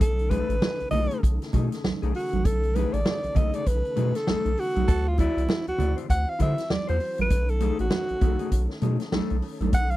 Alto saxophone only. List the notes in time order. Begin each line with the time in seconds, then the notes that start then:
0.01 A4
0.30 B4
0.91 D#5
2.15 F#4
2.45 A4
2.75 B4
2.93 D5
3.36 D#5
3.55 D5
3.67 B4
4.16 A4
4.59 F#4
5.08 F4
5.20 E4
5.68 F#4
6.10 F#5
6.29 F5
6.42 E5
6.71 D5
6.89 C5
7.21 B4
7.50 A4
7.81 F#4
9.74 F#5
9.91 F5